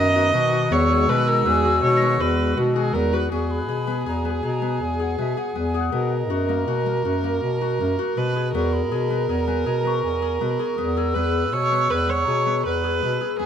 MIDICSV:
0, 0, Header, 1, 7, 480
1, 0, Start_track
1, 0, Tempo, 372902
1, 914, Time_signature, 7, 2, 24, 8
1, 17323, End_track
2, 0, Start_track
2, 0, Title_t, "Celesta"
2, 0, Program_c, 0, 8
2, 2535, Note_on_c, 0, 94, 68
2, 4250, Note_off_c, 0, 94, 0
2, 4612, Note_on_c, 0, 90, 49
2, 6330, Note_off_c, 0, 90, 0
2, 7401, Note_on_c, 0, 87, 60
2, 7471, Note_on_c, 0, 90, 49
2, 7832, Note_off_c, 0, 87, 0
2, 7870, Note_off_c, 0, 90, 0
2, 8319, Note_on_c, 0, 82, 56
2, 10034, Note_off_c, 0, 82, 0
2, 12708, Note_on_c, 0, 85, 72
2, 14437, Note_off_c, 0, 85, 0
2, 15762, Note_on_c, 0, 82, 45
2, 15827, Note_on_c, 0, 85, 46
2, 17323, Note_off_c, 0, 82, 0
2, 17323, Note_off_c, 0, 85, 0
2, 17323, End_track
3, 0, Start_track
3, 0, Title_t, "Flute"
3, 0, Program_c, 1, 73
3, 0, Note_on_c, 1, 82, 82
3, 408, Note_off_c, 1, 82, 0
3, 425, Note_on_c, 1, 85, 93
3, 799, Note_on_c, 1, 87, 88
3, 818, Note_off_c, 1, 85, 0
3, 925, Note_on_c, 1, 88, 111
3, 944, Note_off_c, 1, 87, 0
3, 3795, Note_off_c, 1, 88, 0
3, 4270, Note_on_c, 1, 85, 83
3, 4509, Note_on_c, 1, 83, 91
3, 4529, Note_off_c, 1, 85, 0
3, 5229, Note_off_c, 1, 83, 0
3, 5237, Note_on_c, 1, 82, 84
3, 5475, Note_on_c, 1, 80, 78
3, 5495, Note_off_c, 1, 82, 0
3, 5714, Note_on_c, 1, 82, 78
3, 5733, Note_off_c, 1, 80, 0
3, 6198, Note_on_c, 1, 80, 70
3, 6218, Note_off_c, 1, 82, 0
3, 6444, Note_on_c, 1, 78, 78
3, 6463, Note_off_c, 1, 80, 0
3, 6669, Note_off_c, 1, 78, 0
3, 6676, Note_on_c, 1, 76, 72
3, 6930, Note_on_c, 1, 78, 69
3, 6950, Note_off_c, 1, 76, 0
3, 7159, Note_on_c, 1, 80, 77
3, 7178, Note_off_c, 1, 78, 0
3, 7397, Note_on_c, 1, 78, 76
3, 7416, Note_off_c, 1, 80, 0
3, 7887, Note_on_c, 1, 75, 69
3, 7906, Note_off_c, 1, 78, 0
3, 8839, Note_off_c, 1, 75, 0
3, 10989, Note_on_c, 1, 85, 83
3, 11231, Note_on_c, 1, 83, 78
3, 11251, Note_off_c, 1, 85, 0
3, 11945, Note_off_c, 1, 83, 0
3, 11953, Note_on_c, 1, 82, 78
3, 12192, Note_on_c, 1, 80, 70
3, 12211, Note_off_c, 1, 82, 0
3, 12421, Note_on_c, 1, 82, 78
3, 12441, Note_off_c, 1, 80, 0
3, 12894, Note_off_c, 1, 82, 0
3, 12901, Note_on_c, 1, 80, 73
3, 13387, Note_on_c, 1, 83, 80
3, 13406, Note_off_c, 1, 80, 0
3, 13702, Note_on_c, 1, 85, 78
3, 13721, Note_off_c, 1, 83, 0
3, 13857, Note_on_c, 1, 87, 87
3, 13877, Note_off_c, 1, 85, 0
3, 14111, Note_on_c, 1, 88, 103
3, 14130, Note_off_c, 1, 87, 0
3, 17236, Note_off_c, 1, 88, 0
3, 17323, End_track
4, 0, Start_track
4, 0, Title_t, "Viola"
4, 0, Program_c, 2, 41
4, 0, Note_on_c, 2, 75, 104
4, 924, Note_on_c, 2, 73, 87
4, 943, Note_off_c, 2, 75, 0
4, 1402, Note_on_c, 2, 71, 88
4, 1421, Note_off_c, 2, 73, 0
4, 1640, Note_on_c, 2, 70, 84
4, 1659, Note_off_c, 2, 71, 0
4, 1871, Note_on_c, 2, 68, 84
4, 1890, Note_off_c, 2, 70, 0
4, 2350, Note_off_c, 2, 68, 0
4, 2360, Note_on_c, 2, 73, 86
4, 2833, Note_on_c, 2, 71, 85
4, 2852, Note_off_c, 2, 73, 0
4, 3308, Note_on_c, 2, 66, 75
4, 3327, Note_off_c, 2, 71, 0
4, 3544, Note_off_c, 2, 66, 0
4, 3551, Note_on_c, 2, 68, 74
4, 3777, Note_on_c, 2, 70, 80
4, 3797, Note_off_c, 2, 68, 0
4, 4034, Note_on_c, 2, 71, 72
4, 4053, Note_off_c, 2, 70, 0
4, 4268, Note_off_c, 2, 71, 0
4, 4276, Note_on_c, 2, 68, 64
4, 7582, Note_off_c, 2, 68, 0
4, 7634, Note_on_c, 2, 70, 74
4, 10520, Note_on_c, 2, 71, 80
4, 10539, Note_off_c, 2, 70, 0
4, 10981, Note_off_c, 2, 71, 0
4, 10989, Note_on_c, 2, 70, 82
4, 14342, Note_on_c, 2, 71, 84
4, 14361, Note_off_c, 2, 70, 0
4, 14840, Note_on_c, 2, 73, 94
4, 14859, Note_off_c, 2, 71, 0
4, 15320, Note_on_c, 2, 71, 88
4, 15339, Note_off_c, 2, 73, 0
4, 15569, Note_on_c, 2, 73, 89
4, 15588, Note_off_c, 2, 71, 0
4, 16283, Note_off_c, 2, 73, 0
4, 16288, Note_on_c, 2, 71, 86
4, 17193, Note_off_c, 2, 71, 0
4, 17235, Note_on_c, 2, 68, 72
4, 17323, Note_off_c, 2, 68, 0
4, 17323, End_track
5, 0, Start_track
5, 0, Title_t, "Harp"
5, 0, Program_c, 3, 46
5, 0, Note_on_c, 3, 59, 69
5, 0, Note_on_c, 3, 61, 70
5, 0, Note_on_c, 3, 66, 74
5, 197, Note_off_c, 3, 66, 0
5, 202, Note_on_c, 3, 66, 73
5, 431, Note_off_c, 3, 59, 0
5, 436, Note_on_c, 3, 59, 75
5, 671, Note_off_c, 3, 66, 0
5, 677, Note_on_c, 3, 66, 67
5, 818, Note_off_c, 3, 61, 0
5, 914, Note_off_c, 3, 59, 0
5, 919, Note_on_c, 3, 59, 85
5, 1159, Note_on_c, 3, 68, 70
5, 1394, Note_off_c, 3, 59, 0
5, 1399, Note_on_c, 3, 59, 69
5, 1630, Note_off_c, 3, 68, 0
5, 1635, Note_on_c, 3, 68, 68
5, 1869, Note_off_c, 3, 59, 0
5, 1874, Note_on_c, 3, 59, 75
5, 2113, Note_off_c, 3, 66, 0
5, 2118, Note_on_c, 3, 66, 68
5, 2593, Note_off_c, 3, 59, 0
5, 2598, Note_on_c, 3, 59, 78
5, 2835, Note_off_c, 3, 66, 0
5, 2840, Note_on_c, 3, 66, 70
5, 3308, Note_off_c, 3, 59, 0
5, 3313, Note_on_c, 3, 59, 71
5, 3543, Note_off_c, 3, 66, 0
5, 3548, Note_on_c, 3, 66, 73
5, 3785, Note_off_c, 3, 59, 0
5, 3791, Note_on_c, 3, 59, 76
5, 4024, Note_off_c, 3, 66, 0
5, 4029, Note_on_c, 3, 66, 71
5, 4265, Note_off_c, 3, 59, 0
5, 4270, Note_on_c, 3, 59, 73
5, 4561, Note_off_c, 3, 68, 0
5, 4746, Note_on_c, 3, 68, 66
5, 4978, Note_off_c, 3, 59, 0
5, 4983, Note_on_c, 3, 59, 61
5, 5222, Note_off_c, 3, 68, 0
5, 5227, Note_on_c, 3, 68, 66
5, 5464, Note_off_c, 3, 59, 0
5, 5469, Note_on_c, 3, 59, 63
5, 5696, Note_off_c, 3, 68, 0
5, 5702, Note_on_c, 3, 68, 62
5, 5940, Note_off_c, 3, 59, 0
5, 5945, Note_on_c, 3, 59, 64
5, 6425, Note_off_c, 3, 68, 0
5, 6430, Note_on_c, 3, 68, 67
5, 6667, Note_off_c, 3, 59, 0
5, 6672, Note_on_c, 3, 59, 65
5, 6905, Note_off_c, 3, 68, 0
5, 6910, Note_on_c, 3, 68, 64
5, 7144, Note_off_c, 3, 59, 0
5, 7150, Note_on_c, 3, 59, 67
5, 7166, Note_off_c, 3, 66, 0
5, 7385, Note_off_c, 3, 68, 0
5, 7390, Note_on_c, 3, 68, 62
5, 7620, Note_off_c, 3, 59, 0
5, 7625, Note_on_c, 3, 59, 78
5, 8107, Note_on_c, 3, 66, 64
5, 8353, Note_on_c, 3, 58, 61
5, 8430, Note_off_c, 3, 59, 0
5, 8588, Note_off_c, 3, 66, 0
5, 8593, Note_on_c, 3, 66, 66
5, 8825, Note_off_c, 3, 58, 0
5, 8830, Note_on_c, 3, 58, 63
5, 9069, Note_off_c, 3, 66, 0
5, 9074, Note_on_c, 3, 66, 60
5, 9310, Note_off_c, 3, 58, 0
5, 9315, Note_on_c, 3, 58, 67
5, 9791, Note_off_c, 3, 66, 0
5, 9797, Note_on_c, 3, 66, 66
5, 10040, Note_off_c, 3, 58, 0
5, 10045, Note_on_c, 3, 58, 60
5, 10275, Note_off_c, 3, 66, 0
5, 10280, Note_on_c, 3, 66, 70
5, 10317, Note_off_c, 3, 68, 0
5, 10517, Note_on_c, 3, 59, 70
5, 10594, Note_off_c, 3, 58, 0
5, 10759, Note_on_c, 3, 68, 67
5, 10993, Note_off_c, 3, 59, 0
5, 10998, Note_on_c, 3, 59, 77
5, 11471, Note_off_c, 3, 68, 0
5, 11476, Note_on_c, 3, 68, 68
5, 11713, Note_off_c, 3, 59, 0
5, 11718, Note_on_c, 3, 59, 65
5, 11954, Note_off_c, 3, 68, 0
5, 11959, Note_on_c, 3, 68, 66
5, 12190, Note_off_c, 3, 59, 0
5, 12195, Note_on_c, 3, 59, 66
5, 12431, Note_off_c, 3, 68, 0
5, 12436, Note_on_c, 3, 68, 65
5, 12672, Note_off_c, 3, 59, 0
5, 12677, Note_on_c, 3, 59, 66
5, 13150, Note_off_c, 3, 68, 0
5, 13156, Note_on_c, 3, 68, 74
5, 13393, Note_off_c, 3, 59, 0
5, 13398, Note_on_c, 3, 59, 67
5, 13416, Note_off_c, 3, 66, 0
5, 13630, Note_off_c, 3, 68, 0
5, 13635, Note_on_c, 3, 68, 66
5, 13869, Note_off_c, 3, 59, 0
5, 13875, Note_on_c, 3, 59, 68
5, 14116, Note_off_c, 3, 68, 0
5, 14122, Note_on_c, 3, 68, 67
5, 14353, Note_off_c, 3, 59, 0
5, 14358, Note_on_c, 3, 59, 78
5, 14837, Note_off_c, 3, 68, 0
5, 14842, Note_on_c, 3, 68, 64
5, 15076, Note_off_c, 3, 59, 0
5, 15081, Note_on_c, 3, 59, 68
5, 15315, Note_off_c, 3, 68, 0
5, 15320, Note_on_c, 3, 68, 67
5, 15554, Note_off_c, 3, 59, 0
5, 15559, Note_on_c, 3, 59, 63
5, 15800, Note_off_c, 3, 68, 0
5, 15805, Note_on_c, 3, 68, 66
5, 16035, Note_off_c, 3, 59, 0
5, 16040, Note_on_c, 3, 59, 67
5, 16521, Note_off_c, 3, 68, 0
5, 16527, Note_on_c, 3, 68, 68
5, 16757, Note_off_c, 3, 59, 0
5, 16762, Note_on_c, 3, 59, 61
5, 16997, Note_off_c, 3, 68, 0
5, 17002, Note_on_c, 3, 68, 64
5, 17233, Note_off_c, 3, 59, 0
5, 17238, Note_on_c, 3, 59, 68
5, 17323, Note_off_c, 3, 59, 0
5, 17323, Note_off_c, 3, 68, 0
5, 17323, End_track
6, 0, Start_track
6, 0, Title_t, "Analog synth pad"
6, 0, Program_c, 4, 89
6, 0, Note_on_c, 4, 51, 67
6, 0, Note_on_c, 4, 59, 64
6, 0, Note_on_c, 4, 82, 78
6, 884, Note_off_c, 4, 59, 0
6, 886, Note_off_c, 4, 82, 0
6, 906, Note_on_c, 4, 56, 66
6, 909, Note_on_c, 4, 66, 80
6, 4221, Note_off_c, 4, 51, 0
6, 4232, Note_off_c, 4, 56, 0
6, 4233, Note_off_c, 4, 66, 0
6, 17323, End_track
7, 0, Start_track
7, 0, Title_t, "Bass clarinet"
7, 0, Program_c, 5, 71
7, 0, Note_on_c, 5, 42, 87
7, 404, Note_off_c, 5, 42, 0
7, 430, Note_on_c, 5, 47, 83
7, 882, Note_off_c, 5, 47, 0
7, 912, Note_on_c, 5, 40, 89
7, 1363, Note_off_c, 5, 40, 0
7, 1389, Note_on_c, 5, 47, 91
7, 1841, Note_off_c, 5, 47, 0
7, 1871, Note_on_c, 5, 40, 81
7, 2322, Note_off_c, 5, 40, 0
7, 2347, Note_on_c, 5, 47, 93
7, 2799, Note_off_c, 5, 47, 0
7, 2828, Note_on_c, 5, 40, 83
7, 3280, Note_off_c, 5, 40, 0
7, 3308, Note_on_c, 5, 47, 88
7, 3759, Note_off_c, 5, 47, 0
7, 3784, Note_on_c, 5, 40, 83
7, 4237, Note_off_c, 5, 40, 0
7, 4258, Note_on_c, 5, 40, 78
7, 4742, Note_on_c, 5, 47, 75
7, 4761, Note_off_c, 5, 40, 0
7, 5196, Note_off_c, 5, 47, 0
7, 5229, Note_on_c, 5, 40, 76
7, 5680, Note_off_c, 5, 40, 0
7, 5710, Note_on_c, 5, 47, 81
7, 6160, Note_off_c, 5, 47, 0
7, 6193, Note_on_c, 5, 40, 70
7, 6642, Note_off_c, 5, 40, 0
7, 6669, Note_on_c, 5, 47, 74
7, 6895, Note_off_c, 5, 47, 0
7, 7143, Note_on_c, 5, 40, 75
7, 7597, Note_off_c, 5, 40, 0
7, 7626, Note_on_c, 5, 47, 84
7, 8109, Note_on_c, 5, 42, 79
7, 8129, Note_off_c, 5, 47, 0
7, 8561, Note_off_c, 5, 42, 0
7, 8590, Note_on_c, 5, 47, 80
7, 9042, Note_off_c, 5, 47, 0
7, 9072, Note_on_c, 5, 42, 75
7, 9523, Note_off_c, 5, 42, 0
7, 9559, Note_on_c, 5, 47, 70
7, 10007, Note_off_c, 5, 47, 0
7, 10045, Note_on_c, 5, 42, 81
7, 10264, Note_off_c, 5, 42, 0
7, 10518, Note_on_c, 5, 47, 85
7, 10966, Note_off_c, 5, 47, 0
7, 10998, Note_on_c, 5, 40, 89
7, 11481, Note_on_c, 5, 47, 84
7, 11500, Note_off_c, 5, 40, 0
7, 11928, Note_off_c, 5, 47, 0
7, 11956, Note_on_c, 5, 40, 87
7, 12406, Note_off_c, 5, 40, 0
7, 12440, Note_on_c, 5, 47, 80
7, 12888, Note_off_c, 5, 47, 0
7, 12919, Note_on_c, 5, 40, 71
7, 13368, Note_off_c, 5, 40, 0
7, 13398, Note_on_c, 5, 47, 81
7, 13622, Note_off_c, 5, 47, 0
7, 13875, Note_on_c, 5, 40, 85
7, 14326, Note_off_c, 5, 40, 0
7, 14360, Note_on_c, 5, 40, 82
7, 14835, Note_on_c, 5, 47, 78
7, 14854, Note_off_c, 5, 40, 0
7, 15286, Note_off_c, 5, 47, 0
7, 15318, Note_on_c, 5, 40, 84
7, 15769, Note_off_c, 5, 40, 0
7, 15799, Note_on_c, 5, 47, 72
7, 16249, Note_off_c, 5, 47, 0
7, 16289, Note_on_c, 5, 40, 72
7, 16735, Note_off_c, 5, 40, 0
7, 16768, Note_on_c, 5, 47, 76
7, 16989, Note_off_c, 5, 47, 0
7, 17245, Note_on_c, 5, 40, 84
7, 17323, Note_off_c, 5, 40, 0
7, 17323, End_track
0, 0, End_of_file